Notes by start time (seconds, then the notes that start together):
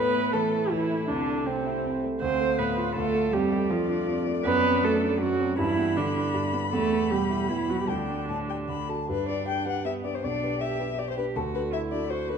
Already playing: A2 B3 B4
0.15 A3
0.33 E3 A3 A4
0.53 E4
0.70 A2 E3 E4
0.91 A3
1.08 C2 D3 D4
1.28 A3
1.45 C3 C4
1.66 E4
1.84 C2
2.03 A3
2.21 D2 C4 C5 F5
2.41 A3
2.58 A2 B3 B4
2.77 F4
2.95 D2 A3 A4
3.15 A3
3.33 F2 G3 G4 D5
3.51 A3
3.69 F3 F4
3.89 D4
4.08 F2
4.27 A3
4.45 F#2 B3 B4
4.64 C4
4.82 F#3 A3 A4
5.02 D4
5.20 F#2 F#3 F#4
5.40 C4
5.58 G2 E3 E4 B5
5.78 B3
5.96 D3 D4
6.16 D4
6.34 G2
6.53 B3
6.73 E2 A3 A4
6.92 B3
7.11 B2 G3 G4
7.30 E4
7.49 E2 E3 E4
7.69 F#3 B3 F#4
7.79 G3 G4
7.88 D2 D3 D4 G5
8.08 D4
8.28 A2 A5
8.48 G4 G5
8.68 D2 B5
8.88 F#4 A4 A5
9.09 G2 D4 B4
9.28 D4 G4 B4 D5
9.47 G4 G5
9.66 D4 G4 B4 F#5
9.85 B3 G4 E5
10.05 D4 G4 B4 D5
10.15 C5
10.23 B1 D4 D5
10.43 D4 G4 B4
10.61 G4 E5
10.79 D4 G4 B4
10.98 G4 D5
11.10 C5
11.17 D4 G4 B4
11.35 D2 F#4 A4
11.55 D4 F#4 A4 B4
11.72 E4 F#4 E5
11.92 D4 F#4 A4 D5
12.10 F#4 C5
12.29 D4 F#4 A4 B4